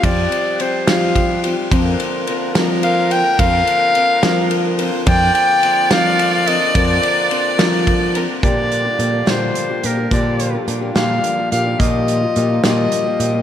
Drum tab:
RD |xxxxxx|xxxxxx|xxxxxx|xxxxxx|
HH |------|------|------|------|
SD |---o--|---o--|---o--|---o--|
BD |o---o-|o-----|o-----|o-----|

RD |xxxxxx|------|------|------|
HH |------|xxxxxx|xxxxxx|xxxxxx|
SD |---o--|---o--|---o--|---o--|
BD |o---o-|o-----|o-----|o-----|